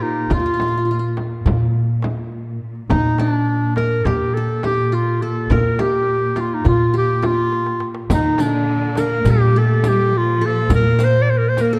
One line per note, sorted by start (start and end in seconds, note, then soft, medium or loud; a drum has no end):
0.00 2.88 A#2 medium
0.00 0.31 D#4 medium
0.00 0.31 F4 medium
0.00 0.98 G4 medium
0.00 0.58 A#4 medium
0.00 0.43 C5 medium
0.30 1.42 A#2 medium
0.30 0.39 F4 medium
0.30 1.15 F4 medium
0.30 frame drum medium
0.30 darbuka dum medium
0.39 0.45 F4 soft
0.46 0.53 F4 medium
0.54 0.61 F4 soft
0.60 0.67 F4 soft
0.60 darbuka tek medium
0.60 frame drum medium
0.68 0.77 F4 soft
0.77 0.85 F4 soft
0.85 0.90 F4 soft
0.85 darbuka ka soft
0.91 0.99 F4 medium
0.99 2.34 F4 soft
1.17 darbuka tek medium
1.17 frame drum soft
1.46 2.57 A#2 medium
1.46 darbuka dum medium
1.46 frame drum medium
1.74 darbuka ka soft
1.89 darbuka ka soft
2.02 darbuka tek medium
2.02 frame drum medium
2.32 darbuka ka soft
2.75 darbuka ka soft
2.89 8.09 A#2 medium
2.89 4.02 A#2 medium
2.89 3.19 D#4 medium
2.89 3.25 D#4 medium
2.89 darbuka dum medium
2.89 frame drum medium
3.18 4.70 D4 medium
3.18 3.31 D#4 medium
3.18 darbuka tek medium
3.18 frame drum medium
3.31 3.76 D4 medium
3.48 darbuka ka soft
3.76 4.07 A#4 medium
3.76 4.43 A#4 medium
3.76 darbuka tek medium
3.76 frame drum medium
4.05 5.17 A#2 medium
4.05 4.36 G4 medium
4.05 4.64 G4 medium
4.05 darbuka dum medium
4.05 frame drum medium
4.34 4.63 A4 medium
4.34 5.22 A4 medium
4.34 darbuka ka soft
4.49 darbuka ka soft
4.63 5.79 G4 medium
4.63 4.96 G4 medium
4.63 darbuka tek medium
4.63 frame drum medium
4.92 6.27 F4 medium
4.92 5.24 F4 medium
4.92 darbuka ka soft
5.22 5.54 A4 medium
5.22 5.57 A4 medium
5.36 darbuka ka soft
5.50 6.61 A#2 medium
5.50 6.64 A#4 medium
5.50 5.82 A#4 medium
5.50 darbuka dum medium
5.50 frame drum medium
5.79 6.93 G4 medium
5.79 6.42 G4 medium
5.79 darbuka tek medium
5.79 frame drum medium
6.36 6.65 F4 medium
6.36 darbuka tek medium
6.36 frame drum soft
6.40 6.56 F4 medium
6.54 6.67 D#4 medium
6.64 7.77 A#2 medium
6.64 7.22 F4 medium
6.64 6.94 F4 medium
6.64 darbuka dum medium
6.64 frame drum medium
6.94 8.19 G4 medium
6.94 7.27 G4 medium
7.22 8.57 F4 medium
7.22 7.90 F4 medium
7.22 darbuka tek medium
7.22 frame drum medium
7.52 darbuka tek soft
7.66 darbuka ka medium
7.80 darbuka tek medium
7.95 darbuka ka medium
8.10 9.22 A#2 medium
8.10 11.79 A#2 medium
8.10 8.37 D#3 medium
8.10 8.45 D#4 medium
8.10 riq medium
8.10 darbuka dum medium
8.10 frame drum medium
8.14 8.43 D#4 medium
8.38 8.98 D3 medium
8.38 9.89 D4 medium
8.38 9.01 D4 medium
8.38 riq medium
8.38 darbuka tek medium
8.38 frame drum medium
8.67 darbuka ka soft
8.96 9.26 A#3 medium
8.96 9.62 A#4 medium
8.96 riq medium
8.96 darbuka tek medium
8.96 frame drum medium
9.00 9.32 A#4 medium
9.25 10.38 A#2 medium
9.25 9.52 G3 medium
9.25 9.83 G4 medium
9.25 riq medium
9.25 darbuka dum medium
9.25 frame drum medium
9.31 9.60 G4 medium
9.53 9.83 A3 medium
9.53 10.41 A4 medium
9.58 9.90 A4 medium
9.83 10.03 G3 medium
9.83 11.09 G4 medium
9.83 riq medium
9.83 darbuka tek medium
9.83 frame drum medium
9.89 10.19 G4 loud
10.04 10.12 G3 medium
10.12 10.70 F3 medium
10.17 10.47 F4 medium
10.41 10.76 A4 medium
10.46 10.73 A4 loud
10.56 darbuka ka soft
10.70 11.79 A#2 medium
10.70 11.21 A#3 medium
10.70 11.58 A#4 medium
10.70 riq medium
10.70 darbuka dum loud
10.70 frame drum loud
10.75 11.06 A#4 loud
10.99 11.79 C5 medium
10.99 riq medium
10.99 darbuka tek medium
10.99 frame drum medium
11.04 11.24 C5 loud
11.22 11.32 D5 medium
11.29 11.39 C5 medium
11.29 darbuka ka soft
11.38 11.51 A#4 medium
11.49 11.63 C5 medium
11.57 11.79 A#3 medium
11.57 11.79 A#4 medium
11.57 riq soft
11.57 darbuka tek medium
11.57 frame drum medium
11.61 11.68 A#4 medium
11.68 11.75 A#4 medium
11.73 11.79 A4 medium